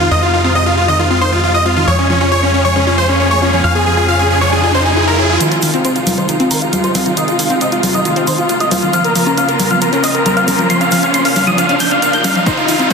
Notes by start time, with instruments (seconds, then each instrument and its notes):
Already playing: string section C3 F3 G#3 D#4 F4
0.00 synth arpeggio sound D#3, supersaw synth F4, grand piano F5
0.11 analog synth bass F2, synth arpeggio sound D#3, supersaw synth D#5, grand piano D#6
0.22 supersaw synth F4, grand piano F5
0.33 synth arpeggio sound D#3, supersaw synth F4, grand piano F5
0.44 synth arpeggio sound C4, supersaw synth F4, grand piano F5
0.55 synth arpeggio sound C4, supersaw synth D#5, grand piano D#6
0.66 supersaw synth F4, synth arpeggio sound F4, grand piano F5
0.77 supersaw synth F4, grand piano F5
0.88 synth arpeggio sound D#3, supersaw synth D#5, grand piano D#6
0.99 synth arpeggio sound D#3, supersaw synth F4, grand piano F5
1.10 synth arpeggio sound C4, supersaw synth F4, grand piano F5
1.21 synth arpeggio sound D#3, supersaw synth C5, grand piano C6
1.32 supersaw synth F4, grand piano F5
1.44 supersaw synth F4, synth arpeggio sound F4, grand piano F5
1.54 synth arpeggio sound F4, supersaw synth D#5, grand piano D#6
1.65 synth arpeggio sound C4, supersaw synth F4, grand piano F5
1.76 synth arpeggio sound D#3, supersaw synth F4, grand piano F5
1.87 analog synth bass F2, string section C#3 F3 F4 G#4, synth arpeggio sound F3, supersaw synth C#5, grand piano C#6, riser
1.99 supersaw synth C#4, grand piano C#5
2.10 synth arpeggio sound F3, supersaw synth C#4, grand piano C#5
2.21 supersaw synth C#4, synth arpeggio sound F4, grand piano C#5
2.32 synth arpeggio sound F4, supersaw synth C#5, grand piano C#6
2.43 supersaw synth C#4, synth arpeggio sound C#5, grand piano C#5
2.54 supersaw synth C#4, grand piano C#5
2.65 synth arpeggio sound F3, supersaw synth C#5, grand piano C#6
2.76 synth arpeggio sound F3, supersaw synth C#4, grand piano C#5
2.87 supersaw synth C#4, synth arpeggio sound F4, grand piano C#5
2.98 synth arpeggio sound F3, supersaw synth C5, grand piano C6
3.09 supersaw synth C#4, grand piano C#5
3.20 supersaw synth C#4, synth arpeggio sound C#5, grand piano C#5
3.31 supersaw synth C#5, synth arpeggio sound C#5, grand piano C#6
3.42 supersaw synth C#4, synth arpeggio sound F4, grand piano C#5
3.53 synth arpeggio sound F3, supersaw synth C#4, grand piano C#5
3.64 analog synth bass F2, synth arpeggio sound F3, supersaw synth F5, grand piano F6
3.75 supersaw synth G#4, grand piano G#5
3.86 synth arpeggio sound F3, supersaw synth G#4, grand piano G#5
3.97 synth arpeggio sound F4, supersaw synth G#4, grand piano G#5
4.08 synth arpeggio sound F4, supersaw synth F5, grand piano F6
4.19 supersaw synth G#4, synth arpeggio sound C#5, grand piano G#5
4.30 supersaw synth G#4, grand piano G#5
4.41 synth arpeggio sound F3, supersaw synth C#5, grand piano C#6
4.52 synth arpeggio sound F3, supersaw synth G#4, grand piano G#5
4.63 synth arpeggio sound F4, supersaw synth G#4, grand piano G#5
4.74 synth arpeggio sound C#4, supersaw synth C5, grand piano C6
4.85 supersaw synth G#4, grand piano G#5
4.96 synth arpeggio sound F4, supersaw synth G#4, grand piano G#5
5.07 synth arpeggio sound G#4, supersaw synth A#4, grand piano A#5
5.19 supersaw synth G#4, synth arpeggio sound C#5, grand piano G#5
5.30 synth arpeggio sound F3, supersaw synth G#4, grand piano G#5
5.41 string section C3 F3 G#3 D#4 F4, synth arpeggio sound D#3, supersaw synth C5, grand piano C6, closed hi-hat, riser, shaker
5.52 supersaw synth F4, grand piano F5, closed hi-hat, shaker
5.62 synth arpeggio sound D#3, supersaw synth F4, grand piano F5, open hi-hat, shaker
5.74 synth arpeggio sound C4, supersaw synth F4, grand piano F5, closed hi-hat, shaker
5.85 synth arpeggio sound C4, supersaw synth C5, grand piano C6, closed hi-hat, shaker
5.96 supersaw synth F4, synth arpeggio sound F4, grand piano F5, closed hi-hat, shaker
6.07 supersaw synth F4, grand piano F5, open hi-hat, high conga, shaker
6.18 synth arpeggio sound D#3, supersaw synth C5, grand piano C6, closed hi-hat, shaker
6.28 synth arpeggio sound D#3, supersaw synth F4, grand piano F5, closed hi-hat, shaker
6.40 synth arpeggio sound C4, supersaw synth F4, grand piano F5, closed hi-hat, shaker
6.51 synth arpeggio sound D#3, supersaw synth A#4, grand piano A#5, open hi-hat, shaker
6.62 supersaw synth F4, grand piano F5, closed hi-hat, shaker
6.73 supersaw synth F4, synth arpeggio sound F4, grand piano F5, closed hi-hat, high conga, shaker
6.84 synth arpeggio sound F4, supersaw synth C5, grand piano C6, closed hi-hat, shaker
6.95 synth arpeggio sound C4, supersaw synth F4, grand piano F5, open hi-hat, high conga, shaker
7.06 synth arpeggio sound D#3, supersaw synth F4, grand piano F5, closed hi-hat, shaker
7.17 synth arpeggio sound D#3, supersaw synth D#5, grand piano D#6, closed hi-hat, shaker
7.28 supersaw synth F4, grand piano F5, closed hi-hat, shaker
7.39 synth arpeggio sound D#3, supersaw synth F4, grand piano F5, open hi-hat, shaker
7.50 synth arpeggio sound C4, supersaw synth F4, grand piano F5, closed hi-hat, shaker
7.61 synth arpeggio sound C4, supersaw synth D#5, grand piano D#6, closed hi-hat, shaker
7.72 supersaw synth F4, synth arpeggio sound F4, grand piano F5, closed hi-hat, shaker
7.83 supersaw synth F4, grand piano F5, open hi-hat, high conga, shaker
7.94 synth arpeggio sound D#3, supersaw synth D#5, grand piano D#6, closed hi-hat, shaker
8.05 synth arpeggio sound D#3, supersaw synth F4, grand piano F5, closed hi-hat, shaker
8.16 synth arpeggio sound C4, supersaw synth F4, grand piano F5, closed hi-hat, shaker
8.27 synth arpeggio sound D#3, supersaw synth C5, grand piano C6, open hi-hat, shaker
8.38 supersaw synth F4, grand piano F5, closed hi-hat, shaker
8.49 supersaw synth F4, synth arpeggio sound F4, grand piano F5, closed hi-hat, shaker
8.60 synth arpeggio sound F4, supersaw synth D#5, grand piano D#6, closed hi-hat, shaker
8.71 synth arpeggio sound C4, supersaw synth F4, grand piano F5, open hi-hat, high conga, shaker
8.82 synth arpeggio sound D#3, supersaw synth F4, grand piano F5, closed hi-hat, shaker
8.93 string section C#3 A#3 C4, synth arpeggio sound F3, supersaw synth F5, grand piano F6, closed hi-hat, shaker
9.04 supersaw synth A#4, grand piano A#5, closed hi-hat, shaker
9.15 synth arpeggio sound F3, supersaw synth A#4, open hi-hat, shaker
9.26 synth arpeggio sound C#4, supersaw synth A#4, grand piano A#5, closed hi-hat, shaker
9.38 synth arpeggio sound C#4, supersaw synth F5, grand piano F6, closed hi-hat, shaker
9.48 supersaw synth A#4, synth arpeggio sound A#4, grand piano A#5, closed hi-hat, shaker
9.59 supersaw synth A#4, grand piano A#5, open hi-hat, high conga, shaker
9.70 synth arpeggio sound F3, supersaw synth F5, grand piano F6, closed hi-hat, shaker
9.81 synth arpeggio sound F3, supersaw synth A#4, grand piano A#5, closed hi-hat, shaker
9.92 synth arpeggio sound C#4, supersaw synth A#4, grand piano A#5, closed hi-hat, shaker
10.03 synth arpeggio sound F3, supersaw synth D#5, grand piano D#6, open hi-hat, shaker
10.15 supersaw synth A#4, grand piano A#5, closed hi-hat, shaker
10.26 supersaw synth A#4, synth arpeggio sound A#4, grand piano A#5, closed hi-hat, high conga, shaker
10.37 synth arpeggio sound A#4, supersaw synth F5, grand piano F6, closed hi-hat, shaker
10.48 synth arpeggio sound C#4, supersaw synth A#4, grand piano A#5, open hi-hat, high conga, shaker
10.59 synth arpeggio sound F3, supersaw synth A#4, grand piano A#5, closed hi-hat, shaker
10.70 synth arpeggio sound F3, supersaw synth C6, grand piano C7, closed hi-hat, shaker
10.81 supersaw synth F5, grand piano F6, closed hi-hat, shaker
10.91 synth arpeggio sound F3, supersaw synth F5, grand piano F6, open hi-hat, shaker
11.03 synth arpeggio sound C#4, supersaw synth F5, grand piano F6, closed hi-hat, shaker
11.14 synth arpeggio sound C#4, supersaw synth C6, grand piano C7, closed hi-hat, shaker
11.25 synth arpeggio sound A#4, supersaw synth F5, grand piano F6, open hi-hat, shaker
11.36 supersaw synth F5, grand piano F6, open hi-hat, high conga, shaker
11.47 synth arpeggio sound F3, supersaw synth D#6, grand piano D#7, closed hi-hat, shaker
11.58 synth arpeggio sound F3, supersaw synth F5, grand piano F6, closed hi-hat, shaker
11.69 synth arpeggio sound C#4, supersaw synth F5, grand piano F6, closed hi-hat, shaker
11.80 synth arpeggio sound F3, supersaw synth G6, grand piano G7, open hi-hat, shaker
11.90 supersaw synth F5, grand piano F6, closed hi-hat, shaker
12.02 synth arpeggio sound A#4, supersaw synth F5, grand piano F6, closed hi-hat, shaker
12.13 synth arpeggio sound A#4, supersaw synth G6, grand piano G7, closed hi-hat, shaker
12.24 synth arpeggio sound C#4, supersaw synth F5, grand piano F6, open hi-hat, high conga, shaker
12.35 synth arpeggio sound F3, supersaw synth F5, grand piano F6, closed hi-hat, shaker
12.46 string section C3 G#3 D#4, synth arpeggio sound D#3, supersaw synth C5, grand piano C6, kick, closed hi-hat, shaker
12.57 supersaw synth F4, grand piano F5, closed hi-hat, shaker
12.68 synth arpeggio sound D#3, supersaw synth F4, grand piano F5, open hi-hat, shaker
12.79 synth arpeggio sound C4, supersaw synth F4, grand piano F5, closed hi-hat, shaker